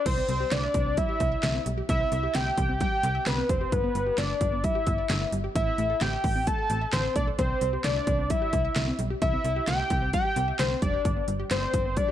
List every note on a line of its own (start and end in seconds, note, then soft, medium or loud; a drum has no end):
0.06 0.22 C2 medium
0.06 0.12 E3 medium
0.06 0.53 C5 loud
0.06 kick loud
0.06 closed hi-hat medium
0.06 crash medium
0.17 0.24 C4 medium
0.29 0.45 C2 loud
0.29 0.35 G3 medium
0.29 closed hi-hat medium
0.40 0.47 G4 medium
0.51 0.68 C2 loud
0.51 0.58 C4 medium
0.51 0.99 D5 loud
0.51 snare loud
0.51 clap medium
0.51 closed hi-hat medium
0.63 0.70 E5 medium
0.74 0.99 C2 loud
0.74 0.81 E3 medium
0.74 kick loud
0.74 closed hi-hat medium
0.86 0.93 C4 medium
0.97 1.04 G3 medium
0.97 1.66 E5 loud
0.97 kick loud
0.97 closed hi-hat medium
1.09 1.15 G4 medium
1.20 1.36 C2 loud
1.20 1.27 C4 medium
1.20 kick medium
1.20 closed hi-hat medium
1.32 1.38 E5 medium
1.43 1.59 C2 loud
1.43 1.50 E3 medium
1.43 snare loud
1.43 clap medium
1.43 closed hi-hat medium
1.55 1.61 C4 medium
1.66 1.82 B1 medium
1.66 1.73 G3 medium
1.66 closed hi-hat medium
1.78 1.84 G4 medium
1.89 2.05 C2 loud
1.89 1.95 E3 loud
1.89 2.36 E5 loud
1.89 kick loud
1.89 closed hi-hat medium
2.01 2.07 C4 medium
2.12 2.28 C2 loud
2.12 2.18 G3 medium
2.12 closed hi-hat medium
2.23 2.30 G4 medium
2.35 2.51 C2 loud
2.35 2.41 C4 medium
2.35 2.80 G5 loud
2.35 snare loud
2.35 clap medium
2.35 closed hi-hat medium
2.46 2.53 E5 medium
2.57 2.82 C2 loud
2.57 2.64 E3 medium
2.57 kick loud
2.57 closed hi-hat medium
2.69 2.76 C4 medium
2.81 2.87 G3 loud
2.81 3.28 G5 loud
2.81 kick medium
2.81 closed hi-hat medium
2.92 2.98 G4 medium
3.03 3.20 C2 loud
3.03 3.10 C4 medium
3.03 closed hi-hat medium
3.15 3.21 E5 medium
3.26 3.42 C2 loud
3.26 3.33 E3 medium
3.26 3.51 B4 loud
3.26 snare loud
3.26 clap medium
3.26 closed hi-hat medium
3.38 3.44 C4 medium
3.49 3.65 F1 loud
3.49 3.56 G3 medium
3.49 3.74 C5 medium
3.49 kick loud
3.49 closed hi-hat medium
3.61 3.67 G4 medium
3.72 3.88 G1 loud
3.72 3.79 D3 loud
3.72 4.20 B4 loud
3.72 kick loud
3.72 closed hi-hat medium
3.84 3.90 B3 medium
3.95 4.11 G1 medium
3.95 4.02 G3 medium
3.95 closed hi-hat medium
4.07 4.13 G4 medium
4.18 4.34 G1 loud
4.18 4.24 B3 medium
4.18 4.66 D5 medium
4.18 snare loud
4.18 clap medium
4.18 closed hi-hat medium
4.29 4.36 D5 medium
4.41 4.65 G1 loud
4.41 4.47 D3 medium
4.41 kick loud
4.41 closed hi-hat medium
4.52 4.59 B3 medium
4.64 4.70 G3 medium
4.64 5.33 E5 loud
4.64 kick medium
4.64 closed hi-hat medium
4.75 4.82 G4 medium
4.87 5.03 G1 loud
4.87 4.93 B3 medium
4.87 kick medium
4.87 closed hi-hat medium
4.98 5.05 D5 medium
5.10 5.26 G1 loud
5.10 5.16 D3 medium
5.10 snare loud
5.10 clap loud
5.10 closed hi-hat medium
5.21 5.28 B3 medium
5.32 5.49 G1 medium
5.32 5.39 G3 medium
5.32 closed hi-hat medium
5.44 5.50 G4 medium
5.55 5.72 A1 loud
5.55 5.62 E3 loud
5.55 6.03 E5 loud
5.55 kick loud
5.55 closed hi-hat medium
5.67 5.73 C4 medium
5.78 5.94 A1 loud
5.78 5.85 A3 medium
5.78 closed hi-hat medium
5.90 5.96 A4 medium
6.01 6.17 A1 medium
6.01 6.08 C4 medium
6.01 6.49 G5 loud
6.01 snare loud
6.01 clap medium
6.01 closed hi-hat medium
6.13 6.19 E5 medium
6.24 6.48 A1 loud
6.24 6.31 E3 medium
6.24 kick loud
6.24 open hi-hat medium
6.36 6.42 C4 medium
6.47 6.54 A3 medium
6.47 6.92 A5 loud
6.47 kick medium
6.47 closed hi-hat medium
6.59 6.65 A4 medium
6.70 6.86 A1 loud
6.70 6.77 C4 medium
6.70 closed hi-hat medium
6.81 6.88 E5 medium
6.93 7.09 A1 loud
6.93 6.99 E3 medium
6.93 7.14 C5 medium
6.93 snare loud
6.93 clap medium
6.93 closed hi-hat medium
7.04 7.11 C4 medium
7.16 7.32 B1 medium
7.16 7.22 A3 medium
7.16 7.26 D5 medium
7.16 kick loud
7.16 closed hi-hat medium
7.27 7.34 A4 medium
7.39 7.55 C2 loud
7.39 7.45 E3 loud
7.39 7.81 C5 loud
7.39 kick loud
7.39 closed hi-hat medium
7.50 7.57 C4 medium
7.61 7.78 C2 loud
7.61 7.68 G3 medium
7.61 closed hi-hat medium
7.73 7.80 G4 medium
7.84 8.00 C2 loud
7.84 7.91 C4 medium
7.84 8.32 D5 loud
7.84 snare loud
7.84 clap medium
7.84 closed hi-hat medium
7.96 8.02 E5 medium
8.07 8.31 C2 loud
8.07 8.14 E3 medium
8.07 kick loud
8.07 closed hi-hat medium
8.19 8.25 C4 medium
8.30 8.37 G3 medium
8.30 8.99 E5 loud
8.30 kick loud
8.30 closed hi-hat medium
8.42 8.48 G4 medium
8.53 8.69 C2 loud
8.53 8.60 C4 medium
8.53 kick medium
8.53 closed hi-hat medium
8.65 8.71 E5 medium
8.76 8.92 C2 loud
8.76 8.83 E3 medium
8.76 snare loud
8.76 clap medium
8.76 closed hi-hat medium
8.88 8.94 C4 medium
8.99 9.15 B1 medium
8.99 9.05 G3 medium
8.99 closed hi-hat medium
9.10 9.17 G4 medium
9.22 9.38 C2 loud
9.22 9.28 E3 loud
9.22 9.64 E5 loud
9.22 kick loud
9.22 closed hi-hat medium
9.33 9.40 C4 medium
9.44 9.61 C2 loud
9.44 9.51 G3 medium
9.44 closed hi-hat medium
9.56 9.63 G4 medium
9.67 9.84 C2 loud
9.67 9.74 C4 medium
9.67 10.10 G5 loud
9.67 snare loud
9.67 clap medium
9.67 closed hi-hat medium
9.79 9.86 E5 medium
9.90 10.15 C2 loud
9.90 9.97 E3 medium
9.90 kick loud
9.90 closed hi-hat medium
10.02 10.08 C4 medium
10.13 10.20 G3 medium
10.13 10.56 G5 loud
10.13 kick loud
10.13 closed hi-hat medium
10.25 10.31 G4 medium
10.36 10.52 C2 loud
10.36 10.43 C4 medium
10.36 closed hi-hat medium
10.48 10.54 E5 medium
10.59 10.75 C2 loud
10.59 10.66 E3 medium
10.59 10.81 C5 medium
10.59 snare loud
10.59 clap medium
10.59 closed hi-hat medium
10.71 10.77 C4 medium
10.82 10.98 F1 medium
10.82 10.89 G3 medium
10.82 11.25 D5 medium
10.82 kick loud
10.82 closed hi-hat medium
10.94 11.00 G4 medium
11.05 11.21 G1 loud
11.05 11.12 D3 loud
11.05 kick loud
11.05 closed hi-hat medium
11.17 11.23 B3 medium
11.28 11.44 G1 medium
11.28 11.35 G3 medium
11.28 closed hi-hat medium
11.40 11.46 G4 medium
11.51 11.67 G1 loud
11.51 11.57 B3 medium
11.51 11.98 C5 loud
11.51 snare loud
11.51 clap medium
11.51 closed hi-hat medium
11.62 11.69 D5 medium
11.74 11.98 G1 loud
11.74 11.80 D3 medium
11.74 kick loud
11.74 closed hi-hat medium
11.85 11.92 B3 medium
11.97 12.03 G3 medium
11.97 12.12 D5 loud
11.97 kick loud
11.97 closed hi-hat medium
12.08 12.12 G4 medium